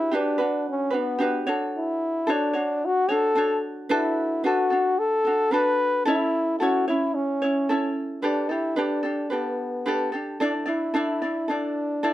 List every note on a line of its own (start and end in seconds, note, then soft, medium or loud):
0.00 0.12 D4 medium
0.00 0.16 E4 loud
0.00 0.13 F#4 medium
0.00 0.10 G4 medium
0.00 0.12 B4 medium
0.11 0.39 D4 medium
0.11 0.67 D4 medium
0.11 0.39 F#4 medium
0.11 0.39 G4 medium
0.11 0.37 B4 medium
0.38 0.94 D4 soft
0.38 0.92 F#4 soft
0.38 0.89 B4 medium
0.69 0.98 C#4 medium
0.90 1.19 D4 soft
0.90 1.19 F#4 soft
0.90 1.19 B4 medium
0.96 1.49 B3 medium
1.18 1.47 D4 medium
1.18 1.46 F#4 medium
1.18 1.46 G4 medium
1.18 1.46 B4 medium
1.47 2.27 D4 medium
1.47 2.29 F#4 medium
1.47 2.26 A4 medium
1.47 2.28 C#5 medium
1.77 2.33 E4 medium
2.27 2.55 D4 medium
2.27 2.54 F#4 medium
2.27 2.54 A4 medium
2.27 2.52 C#5 medium
2.32 2.87 D4 medium
2.53 3.11 D4 soft
2.53 3.10 F#4 soft
2.53 3.07 C#5 medium
2.85 3.12 F#4 loud
3.09 3.35 D4 soft
3.09 3.36 F#4 soft
3.09 3.64 A4 loud
3.09 3.36 C#5 medium
3.35 3.90 D4 medium
3.35 3.90 F#4 medium
3.35 3.91 A4 medium
3.35 3.89 C#5 medium
3.89 4.43 D4 medium
3.89 4.41 E4 medium
3.89 4.44 F#4 medium
3.89 4.46 A4 medium
3.89 4.42 B4 medium
4.44 4.71 D4 medium
4.44 5.00 F#4 medium
4.44 4.70 F#4 medium
4.44 4.69 A4 medium
4.44 4.70 B4 medium
4.70 5.26 D4 soft
4.70 5.25 F#4 soft
4.70 5.25 A4 soft
4.99 5.53 A4 loud
5.25 5.51 D4 soft
5.25 5.52 F#4 soft
5.25 5.52 A4 medium
5.51 6.06 D4 medium
5.51 6.07 F#4 medium
5.51 6.05 A4 medium
5.51 6.06 B4 medium
5.51 6.06 B4 loud
6.05 6.60 C#4 medium
6.05 6.57 E4 loud
6.05 6.61 E4 medium
6.05 6.60 A4 medium
6.05 6.61 C#5 medium
6.59 6.88 C#4 medium
6.59 6.88 E4 medium
6.59 6.85 F#4 medium
6.59 6.87 A4 medium
6.59 6.86 C#5 medium
6.88 7.43 C#4 soft
6.88 7.16 E4 medium
6.88 7.42 E4 soft
6.88 7.41 C#5 medium
7.14 7.96 C#4 medium
7.42 7.69 C#4 soft
7.42 7.69 E4 medium
7.42 7.69 C#5 medium
7.69 8.22 C#4 medium
7.69 8.23 E4 medium
7.69 8.22 A4 medium
7.69 8.24 C#5 medium
8.22 8.50 D4 medium
8.22 8.53 D4 medium
8.22 8.50 G4 medium
8.22 8.48 A4 medium
8.22 8.50 B4 medium
8.49 8.76 D4 soft
8.49 8.79 E4 medium
8.49 8.77 G4 soft
8.49 8.77 A4 soft
8.76 9.04 D4 medium
8.76 9.33 D4 medium
8.76 9.03 G4 medium
8.76 9.01 A4 medium
8.76 9.04 B4 medium
9.03 9.30 D4 soft
9.03 9.29 G4 soft
9.03 9.31 A4 medium
9.30 10.13 B3 medium
9.30 9.86 D4 medium
9.30 9.86 G4 medium
9.30 9.88 A4 medium
9.30 9.84 B4 soft
9.86 10.13 D4 medium
9.86 10.12 G4 medium
9.86 10.11 A4 medium
9.86 10.13 B4 medium
10.12 10.40 D4 soft
10.12 10.40 G4 soft
10.12 10.39 A4 medium
10.40 10.52 D4 medium
10.40 10.67 D4 medium
10.40 10.65 E4 medium
10.40 10.67 A4 medium
10.40 10.64 D5 medium
10.66 10.93 D4 soft
10.66 10.94 E4 soft
10.66 10.93 E4 medium
10.66 10.93 D5 soft
10.94 11.21 D4 medium
10.94 11.22 E4 medium
10.94 11.52 E4 medium
10.94 11.21 A4 medium
10.94 11.21 D5 medium
11.22 11.48 D4 soft
11.22 11.49 E4 soft
11.22 11.49 D5 soft
11.48 12.03 D4 medium
11.48 12.13 D4 medium
11.48 12.03 E4 medium
11.48 12.02 A4 medium
11.48 12.04 D5 medium
12.03 12.13 D4 medium
12.03 12.13 E4 medium
12.03 12.13 A4 medium
12.03 12.13 D5 medium